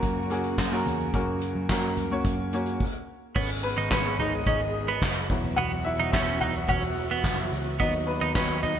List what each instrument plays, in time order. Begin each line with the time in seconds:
Already playing: upright piano C#3 A#3 C#4 F#4 A#4 C#5, string section C#3 F#3 A#3 F#4
0.02 picked electric bass F#2, kick, closed hi-hat
0.30 upright piano A#3 C#4 F#4 G#4, closed hi-hat
0.44 closed hi-hat
0.58 picked electric bass F#2, kick, snare, clap, closed hi-hat
0.71 upright piano A#3 C#4 F#4 A#4
0.86 picked electric bass E2, upright piano C#3, snare, closed hi-hat, floor tom
1.00 closed hi-hat
1.13 picked electric bass F#2, upright piano A#3 C#4 F#4 A#4, kick, closed hi-hat
1.41 closed hi-hat
1.55 picked electric bass F#2
1.69 picked electric bass F#2, upright piano A#3 C#4 F#4 A#4, kick, snare, clap, closed hi-hat
1.97 closed hi-hat, floor tom
2.11 upright piano A#3 C#4 F#4 C#5
2.25 picked electric bass F#2, kick, closed hi-hat
2.53 upright piano A#3 C#4 F#4 C#5, closed hi-hat
2.66 closed hi-hat
2.80 kick, crash
3.35 picked electric bass G#1, string section D#3 G#3 B3 G#4, clean electric guitar B3, upright piano C#4 C#5, kick, crash, shaker
3.50 shaker
3.63 upright piano B3 B4, ride, shaker
3.77 picked electric bass G#1, clean electric guitar D#4, shaker
3.91 picked electric bass G#1, upright piano B3 B4, clean electric guitar C#4, kick, snare, clap, shaker
4.06 shaker
4.19 upright piano G#3 B3 D#4 D#5, clean electric guitar D#4, floor tom, ride, shaker
4.33 shaker
4.46 picked electric bass G#1, clean electric guitar C#4, upright piano D#4 D#5, kick, shaker
4.61 shaker
4.74 ride, shaker
4.88 clean electric guitar B3, shaker
5.02 picked electric bass F#1, kick, snare, clap, ride, shaker
5.17 shaker
5.29 picked electric bass E1, string section E3 F#3 B3 F#4, upright piano F#3 B3 E4, kick, snare, crash, shaker
5.44 floor tom, shaker
5.56 picked electric bass E1, clean electric guitar B3, upright piano F#4 F#5, ride, shaker
5.72 shaker
5.84 upright piano E4 E5, ride, shaker
5.99 picked electric bass E1, clean electric guitar D#4, shaker
6.12 picked electric bass E1, clean electric guitar C#4, upright piano E4 E5, kick, snare, clap, ride, shaker
6.28 shaker
6.41 clean electric guitar D#4, upright piano F#4 F#5, floor tom, ride, shaker
6.55 ride, shaker
6.68 picked electric bass E1, clean electric guitar C#4, upright piano F#4 F#5, kick, ride, shaker
6.83 shaker
6.96 ride, shaker
7.11 clean electric guitar B3, shaker
7.24 picked electric bass F#1, kick, snare, clap, ride, shaker
7.39 shaker
7.52 picked electric bass C#2, snare, ride, shaker
7.66 shaker
7.79 picked electric bass D#2, string section D#3 F#3 B3, upright piano F#3 B3 D#4 D#5, clean electric guitar B3, kick, ride, shaker
7.93 shaker
8.07 upright piano B3 B4, ride, shaker
8.21 picked electric bass D#2, clean electric guitar D#4, shaker
8.35 picked electric bass D#2, upright piano B3 B4, clean electric guitar C#4, kick, snare, clap, shaker
8.49 shaker
8.63 clean electric guitar D#4, upright piano D#4 D#5, floor tom, ride, shaker
8.76 shaker